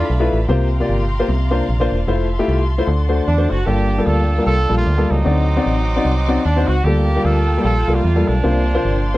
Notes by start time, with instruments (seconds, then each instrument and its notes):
Already playing: horn section A3 D4 F4, string section E5 F5 A5 B5
0.10 fm bass B1
0.20 upright piano A3 E4 F4 B4
0.33 fm bass A1
0.47 fm bass C2, upright piano C3 A#3 F4 G4 C5, string section F5 G5 A#5 C6
0.80 upright piano A#3 F4 G4 D5
0.90 fm bass G1
1.20 upright piano A#3 F4 G4 C5
1.28 fm bass C2, upright piano C3, string section D5
1.51 upright piano A#3 D4 F4 C5
1.69 fm bass A#1
1.80 upright piano A#3 D4 F4 C5
1.92 fm bass E1
2.08 fm bass F1, upright piano A3 E4 F4 C5, string section E5 A5 C6
2.39 upright piano A3 E4 F4 G4
2.48 fm bass C2
2.78 upright piano A3 E4 F4 C5
2.87 fm bass D2, upright piano D3, string section D5 F#5
3.09 upright piano A3 D4 F#4 C5
3.27 fm bass E2, horn section D4
3.38 upright piano A3 D4 F#4 C5
3.50 fm bass F#1, horn section F#4
3.66 fm bass G1, upright piano G2 G3 A#3 F4 A4, horn section A#3 D4 G4, string section F5 G5
3.98 upright piano G3 A#3 F4 A4
4.06 fm bass D2, horn section D4 F4 A4
4.38 upright piano G3 A#3 F4 A#4
4.46 fm bass C2, horn section D4 F4 A4
4.69 fm bass A#1, upright piano G3 A#3 F4 A4
4.77 horn section A3 A#3 F4
4.87 fm bass D2
4.98 upright piano G3 A#3 F4 A4
5.10 fm bass C#2, horn section F#3 C4 D#4
5.24 fm bass D2, upright piano D3 C4 D#4 F#4 D5, string section D#5 F#5 C6 D6
5.57 upright piano C4 D#4 F#4 D5
5.66 fm bass A1
5.96 upright piano C4 D#4 F#4 D5
6.05 fm bass C2
6.28 upright piano C4 D#4 F#4 D5
6.45 fm bass D#2, horn section D4
6.56 upright piano C4 D#4 F#4 C5
6.68 fm bass C#2, horn section F#4
6.84 fm bass D2, upright piano D3 G3 A#3 F4 A4, horn section A#3 G4, string section F5 G5 A5
7.16 upright piano G3 A#3 F4 G4
7.24 fm bass D2, horn section F4 A4
7.57 upright piano G3 A#3 F4 G4
7.64 fm bass A#1, horn section F4 A4
7.88 fm bass C2, upright piano G3 A#3 F4 A4
7.95 horn section A3 A#3 F4
8.05 fm bass E2
8.16 upright piano G3 A#3 F4 A4
8.27 fm bass B1, horn section F3 A#3 D4
8.43 fm bass C2, upright piano C3 A#3 D4 F4 C5, string section D5 G5 C6
8.75 upright piano A#3 D4 F4 C5
8.85 fm bass G1
9.14 upright piano A#3 D4 C5